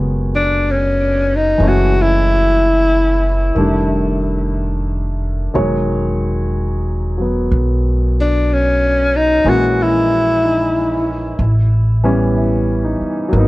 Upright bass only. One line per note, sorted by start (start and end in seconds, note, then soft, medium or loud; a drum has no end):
0.00 1.55 F#1 medium
1.60 3.52 F#1 medium
3.56 5.49 F1 medium
5.55 7.47 E1 medium
7.51 9.41 B1 medium
9.45 11.35 A#1 medium
11.39 12.96 A1 medium
13.01 muted upright bass stroke soft
13.33 13.48 G#1 medium